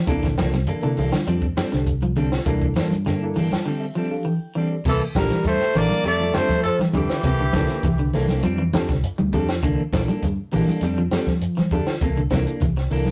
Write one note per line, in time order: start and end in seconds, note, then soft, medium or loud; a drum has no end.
0.07 0.21 C2 medium
0.07 0.21 C3 medium
0.07 0.26 E3 medium
0.07 0.34 A#3 loud
0.07 0.26 A#3 medium
0.07 0.34 D4 medium
0.07 0.26 D4 loud
0.07 0.34 E4 medium
0.07 0.35 A4 loud
0.07 0.27 A4 medium
0.07 kick loud
0.07 closed hi-hat medium
0.07 shekere medium
0.23 0.36 A#1 medium
0.23 0.48 D3 medium
0.23 kick medium
0.23 snare soft
0.23 closed hi-hat soft
0.37 0.65 C2 medium
0.37 0.56 E3 medium
0.37 0.56 A#3 medium
0.37 0.56 D4 medium
0.37 0.57 A4 medium
0.37 snare medium
0.37 closed hi-hat medium
0.37 high conga medium
0.37 shekere medium
0.52 0.77 C3 medium
0.52 snare soft
0.52 closed hi-hat soft
0.52 high conga medium
0.52 shekere medium
0.67 0.83 E3 medium
0.67 0.83 A#3 medium
0.67 0.82 D4 medium
0.67 0.82 A4 medium
0.67 closed hi-hat medium
0.67 low conga medium
0.67 shekere medium
0.82 0.96 C3 medium
0.82 1.07 D3 medium
0.82 1.14 A#3 loud
0.82 0.96 A#3 soft
0.82 1.15 D4 loud
0.82 0.97 D4 medium
0.82 1.15 E4 medium
0.82 0.97 A4 medium
0.82 1.15 A4 loud
0.82 closed hi-hat soft
0.97 1.11 C2 medium
0.97 1.16 E3 medium
0.97 1.16 A#3 medium
0.97 1.16 D4 medium
0.97 1.16 A4 medium
0.97 open hi-hat medium
0.97 low conga medium
0.97 shekere soft
1.12 1.24 D3 medium
1.12 snare medium
1.12 high conga medium
1.12 shekere medium
1.27 1.53 F2 loud
1.27 1.51 F3 medium
1.27 1.45 G3 medium
1.27 1.46 C4 medium
1.27 1.46 D4 medium
1.27 1.46 A4 medium
1.27 closed hi-hat medium
1.27 shekere medium
1.41 kick medium
1.41 closed hi-hat soft
1.57 1.75 G3 medium
1.57 1.70 G3 medium
1.57 1.76 C4 medium
1.57 1.76 D4 medium
1.57 1.76 A4 medium
1.57 muted fingered electric bass stroke soft
1.57 snare medium
1.57 closed hi-hat soft
1.57 high conga medium
1.57 shekere medium
1.72 2.37 C2 medium
1.72 1.96 D3 medium
1.72 1.93 D4 medium
1.72 1.93 G4 medium
1.72 1.93 A4 medium
1.72 snare soft
1.72 closed hi-hat soft
1.72 shekere soft
1.87 kick medium
1.87 closed hi-hat medium
1.87 shekere medium
2.02 2.14 F3 medium
2.02 closed hi-hat soft
2.02 high conga medium
2.16 2.41 D3 medium
2.16 2.35 G3 medium
2.16 2.35 C4 medium
2.16 2.36 D4 medium
2.16 2.36 A4 medium
2.16 closed hi-hat soft
2.16 low conga medium
2.16 shekere soft
2.32 2.38 G4 medium
2.32 2.37 A4 loud
2.32 snare medium
2.32 shekere soft
2.46 2.72 C2 medium
2.46 2.65 E3 medium
2.46 2.71 G3 medium
2.46 2.73 A#3 loud
2.46 2.65 A#3 medium
2.46 2.73 D4 medium
2.46 2.65 D4 medium
2.46 2.73 E4 medium
2.46 2.73 A4 loud
2.46 2.66 A4 medium
2.46 kick loud
2.46 closed hi-hat medium
2.46 shekere medium
2.62 kick medium
2.76 3.55 G2 medium
2.76 3.00 E3 medium
2.76 2.95 E3 medium
2.76 2.95 A#3 medium
2.76 2.95 D4 medium
2.76 2.95 A4 medium
2.76 snare medium
2.76 closed hi-hat medium
2.76 high conga medium
2.76 shekere medium
2.92 closed hi-hat soft
2.92 high conga medium
2.92 shekere medium
3.06 3.30 D3 medium
3.06 3.25 A#3 medium
3.06 3.25 D4 medium
3.06 3.25 A4 medium
3.06 muted clean electric guitar stroke medium
3.06 snare soft
3.06 closed hi-hat medium
3.06 low conga medium
3.06 shekere medium
3.23 3.54 A#3 loud
3.23 3.54 D4 medium
3.23 3.54 E4 medium
3.23 3.54 A4 loud
3.36 3.60 E3 medium
3.36 3.55 E3 medium
3.36 3.55 A#3 medium
3.36 3.55 D4 medium
3.36 3.56 A4 medium
3.36 3.50 G5 medium
3.36 open hi-hat medium
3.36 low conga medium
3.36 shekere soft
3.51 3.65 A5 medium
3.51 snare medium
3.51 high conga medium
3.51 shekere medium
3.65 3.90 D3 medium
3.65 3.85 G3 medium
3.65 3.85 C4 medium
3.65 3.85 A4 medium
3.65 3.80 G5 medium
3.65 muted clean electric guitar stroke medium
3.80 4.08 E5 medium
3.95 4.19 F3 medium
3.95 4.14 G3 medium
3.95 4.15 C4 medium
3.95 4.15 D4 medium
3.95 4.15 A4 medium
4.11 4.32 F3 medium
4.11 4.32 D4 medium
4.11 4.32 G4 medium
4.11 4.32 A4 medium
4.11 4.25 F5 medium
4.25 4.37 E3 medium
4.25 4.53 G5 medium
4.55 4.79 E3 medium
4.55 4.74 G3 medium
4.55 4.74 C4 medium
4.55 4.75 D4 medium
4.55 4.75 A4 medium
4.55 4.83 D5 medium
4.72 4.76 G4 medium
4.72 4.76 A4 medium
4.85 4.98 C2 medium
4.85 5.09 C3 medium
4.85 5.04 E3 medium
4.85 5.01 E3 medium
4.85 5.04 A#3 medium
4.85 5.04 A4 medium
4.85 5.01 A4 medium
4.85 muted clean electric guitar stroke medium
4.85 kick loud
4.85 crash medium
4.85 shekere medium
5.15 5.28 A#1 loud
5.15 5.34 E3 medium
5.15 5.44 G3 medium
5.15 5.36 A#3 medium
5.15 5.34 A#3 medium
5.15 5.37 D4 medium
5.15 5.34 D4 medium
5.15 5.37 E4 medium
5.15 5.37 A4 medium
5.15 5.34 A4 medium
5.15 5.44 A#4 medium
5.15 kick medium
5.15 snare medium
5.15 closed hi-hat medium
5.15 high conga medium
5.15 shekere medium
5.30 5.55 E3 medium
5.30 snare soft
5.30 closed hi-hat medium
5.30 high conga medium
5.30 shekere medium
5.44 5.58 G2 loud
5.44 5.78 A3 medium
5.44 kick medium
5.44 closed hi-hat medium
5.44 shekere medium
5.48 5.79 C5 medium
5.60 snare soft
5.74 5.88 A#1 medium
5.74 5.91 E3 medium
5.74 5.99 E3 medium
5.74 5.96 A#3 medium
5.74 6.06 A#3 medium
5.74 5.96 D4 medium
5.74 5.91 D4 medium
5.74 5.96 E4 medium
5.74 5.96 A4 medium
5.74 5.90 A4 medium
5.74 6.06 D5 loud
5.74 snare soft
5.74 open hi-hat medium
5.74 low conga medium
5.74 shekere soft
5.90 6.05 A#3 soft
5.90 6.05 D4 soft
5.90 muted fingered electric bass stroke soft
5.90 muted clean electric guitar stroke medium
5.90 high conga medium
5.90 shekere medium
6.04 6.31 F2 medium
6.04 6.17 G3 medium
6.04 6.23 G3 medium
6.04 6.37 A3 medium
6.04 6.23 C4 medium
6.04 6.24 A4 medium
6.04 6.37 D5 loud
6.04 muted clean electric guitar stroke medium
6.04 closed hi-hat medium
6.04 high conga medium
6.04 shekere medium
6.21 6.32 F3 medium
6.33 6.53 G3 medium
6.33 6.59 G3 medium
6.33 6.65 A3 medium
6.33 6.53 C4 medium
6.33 6.56 D4 medium
6.33 6.53 D4 medium
6.33 6.56 G4 medium
6.33 6.56 A4 medium
6.33 6.54 A4 medium
6.33 6.63 C5 medium
6.33 muted fingered electric bass stroke soft
6.33 snare medium
6.33 closed hi-hat medium
6.33 high conga loud
6.33 low conga medium
6.33 shekere medium
6.49 6.88 F3 medium
6.49 kick medium
6.49 snare soft
6.49 shekere soft
6.63 6.79 F3 medium
6.63 6.77 A4 medium
6.63 closed hi-hat medium
6.63 shekere medium
6.79 6.92 E3 medium
6.79 snare soft
6.79 high conga medium
6.93 7.07 F2 medium
6.93 7.18 D3 medium
6.93 8.10 E3 medium
6.93 7.13 G3 medium
6.93 7.13 C4 medium
6.93 7.16 D4 medium
6.93 7.13 D4 medium
6.93 7.16 G4 medium
6.93 8.10 G4 loud
6.93 7.16 A4 medium
6.93 7.13 A4 medium
6.93 kick medium
6.93 closed hi-hat medium
6.93 high conga medium
6.93 low conga medium
6.93 shekere soft
7.09 muted fingered electric bass stroke soft
7.09 snare medium
7.09 closed hi-hat medium
7.09 shekere soft
7.23 7.50 C2 medium
7.23 7.37 C3 loud
7.23 7.42 E3 medium
7.23 7.43 A#3 medium
7.23 7.43 A4 medium
7.23 muted clean electric guitar stroke medium
7.23 kick loud
7.23 snare soft
7.23 closed hi-hat medium
7.23 shekere medium
7.41 7.52 D3 medium
7.53 7.67 C2 medium
7.53 7.78 D3 medium
7.53 7.70 E3 medium
7.53 7.69 A#3 medium
7.53 7.76 A#3 medium
7.53 7.69 D4 medium
7.53 7.76 D4 medium
7.53 7.68 A4 medium
7.53 7.76 A4 medium
7.53 kick medium
7.53 snare medium
7.53 closed hi-hat medium
7.53 high conga loud
7.53 shekere medium
7.57 7.77 E4 medium
7.68 7.87 A#3 soft
7.68 7.87 D4 medium
7.68 muted clean electric guitar stroke medium
7.68 snare soft
7.68 closed hi-hat medium
7.68 shekere medium
7.83 8.09 C2 medium
7.83 7.96 E3 medium
7.83 kick medium
7.83 closed hi-hat medium
7.83 low conga medium
7.83 shekere medium
7.99 8.23 D3 medium
8.13 8.41 C2 medium
8.13 8.29 E3 medium
8.13 8.35 A#3 medium
8.13 8.29 A#3 medium
8.13 8.35 D4 medium
8.13 8.28 D4 medium
8.13 8.36 E4 medium
8.13 8.35 A4 loud
8.13 8.27 A4 medium
8.13 snare soft
8.13 open hi-hat medium
8.13 low conga medium
8.13 shekere soft
8.28 8.44 A#3 soft
8.28 8.43 D4 medium
8.28 8.43 A4 medium
8.28 snare soft
8.28 high conga medium
8.28 shekere medium
8.43 8.84 F2 loud
8.43 8.56 F3 medium
8.43 8.62 G3 medium
8.43 8.62 C4 medium
8.43 8.62 D4 medium
8.43 muted clean electric guitar stroke medium
8.43 closed hi-hat medium
8.43 high conga medium
8.43 shekere medium
8.58 8.82 E3 medium
8.73 8.92 G3 medium
8.73 8.92 C4 medium
8.73 8.95 D4 medium
8.73 8.92 D4 medium
8.73 8.95 G4 medium
8.73 8.92 A4 medium
8.73 8.96 A4 loud
8.73 snare medium
8.73 closed hi-hat medium
8.73 high conga loud
8.73 low conga medium
8.73 shekere medium
8.89 9.01 C2 medium
8.89 9.00 D3 medium
8.89 kick medium
8.89 snare soft
8.89 closed hi-hat medium
8.89 shekere soft
9.03 closed hi-hat medium
9.03 shekere medium
9.18 9.32 D2 medium
9.18 9.30 G3 medium
9.18 high conga medium
9.33 9.59 F2 medium
9.33 9.51 G3 medium
9.33 9.51 C4 medium
9.33 9.51 D4 medium
9.33 9.55 D4 loud
9.33 9.55 G4 medium
9.33 9.52 A4 medium
9.33 9.55 A4 loud
9.33 muted clean electric guitar stroke medium
9.33 kick medium
9.33 closed hi-hat medium
9.33 high conga medium
9.33 low conga medium
9.33 shekere soft
9.48 snare medium
9.48 closed hi-hat medium
9.48 shekere soft
9.63 9.76 C2 medium
9.63 9.87 D3 medium
9.63 9.81 E3 medium
9.63 9.81 A#3 medium
9.63 9.81 D4 loud
9.63 9.81 A4 medium
9.63 kick loud
9.63 closed hi-hat medium
9.63 shekere medium
9.93 10.06 A#1 loud
9.93 10.08 E3 medium
9.93 10.14 A#3 medium
9.93 10.14 D4 medium
9.93 10.08 D4 medium
9.93 10.14 E4 medium
9.93 10.14 A4 loud
9.93 10.07 A4 medium
9.93 muted clean electric guitar stroke medium
9.93 kick medium
9.93 snare medium
9.93 closed hi-hat medium
9.93 high conga loud
9.93 shekere medium
10.08 10.32 G3 medium
10.08 10.27 A#3 soft
10.08 10.26 D4 soft
10.08 10.26 A4 medium
10.08 closed hi-hat medium
10.08 high conga medium
10.08 shekere medium
10.22 10.36 G2 loud
10.22 kick medium
10.22 closed hi-hat medium
10.22 low conga medium
10.22 shekere medium
10.52 10.66 A#1 medium
10.52 10.68 E3 medium
10.52 10.77 E3 medium
10.52 10.73 A#3 medium
10.52 10.68 A#3 medium
10.52 10.73 D4 medium
10.52 10.68 D4 medium
10.52 10.74 E4 medium
10.52 10.74 G4 loud
10.52 10.67 A4 medium
10.52 open hi-hat medium
10.52 low conga medium
10.52 shekere soft
10.67 10.83 A#3 soft
10.67 10.82 D4 medium
10.67 10.83 A4 medium
10.67 muted fingered electric bass stroke soft
10.67 high conga medium
10.67 shekere medium
10.81 11.08 F2 loud
10.81 10.95 G3 medium
10.81 11.01 G3 medium
10.81 11.01 C4 medium
10.81 11.01 D4 medium
10.81 11.01 A4 medium
10.81 closed hi-hat medium
10.81 high conga medium
10.81 shekere medium
10.98 11.10 F3 medium
11.11 11.31 G3 medium
11.11 11.37 G3 medium
11.11 11.31 C4 medium
11.11 11.33 D4 medium
11.11 11.31 D4 medium
11.11 11.33 G4 medium
11.11 11.34 A4 medium
11.11 11.32 A4 medium
11.11 muted fingered electric bass stroke soft
11.11 snare medium
11.11 closed hi-hat medium
11.11 high conga medium
11.11 shekere medium
11.27 11.66 F3 medium
11.27 kick medium
11.27 snare soft
11.27 shekere soft
11.41 closed hi-hat medium
11.41 shekere medium
11.57 11.69 E3 medium
11.57 snare soft
11.57 high conga medium
11.71 11.85 F2 medium
11.71 11.96 D3 medium
11.71 11.90 G3 medium
11.71 11.94 D4 loud
11.71 11.91 D4 medium
11.71 11.93 G4 medium
11.71 11.94 A4 loud
11.71 11.91 A4 medium
11.71 kick medium
11.71 closed hi-hat medium
11.71 low conga medium
11.71 shekere soft
11.86 muted fingered electric bass stroke soft
11.86 snare medium
11.86 closed hi-hat soft
11.86 shekere soft
12.01 12.28 C2 medium
12.01 12.15 C3 medium
12.01 12.20 E3 medium
12.01 12.21 A#3 medium
12.01 12.21 A4 medium
12.01 muted clean electric guitar stroke medium
12.01 kick medium
12.01 closed hi-hat medium
12.01 shekere medium
12.17 12.29 D3 medium
12.30 12.45 C2 medium
12.30 12.56 C3 medium
12.30 12.47 E3 medium
12.30 12.47 A#3 medium
12.30 12.54 A#3 medium
12.30 12.47 D4 medium
12.30 12.54 D4 medium
12.30 12.46 A4 medium
12.30 12.54 A4 loud
12.30 kick medium
12.30 snare medium
12.30 closed hi-hat medium
12.30 high conga medium
12.30 shekere medium
12.34 12.55 E4 medium
12.46 12.65 A#3 soft
12.46 12.65 D4 medium
12.46 muted clean electric guitar stroke soft
12.46 closed hi-hat medium
12.46 shekere medium
12.61 12.87 C2 medium
12.61 12.74 E3 medium
12.61 kick medium
12.61 closed hi-hat medium
12.61 low conga medium
12.61 shekere medium
12.77 muted clean electric guitar stroke medium
12.77 snare soft
12.90 13.11 C2 medium
12.90 13.10 E3 medium
12.90 13.11 A#3 medium
12.90 13.10 A#3 medium
12.90 13.11 D4 medium
12.90 13.10 D4 medium
12.90 13.11 E4 medium
12.90 13.10 A4 medium
12.90 13.11 A#4 medium
12.90 open hi-hat medium
12.90 low conga medium
12.90 shekere soft
13.06 high conga medium
13.06 shekere medium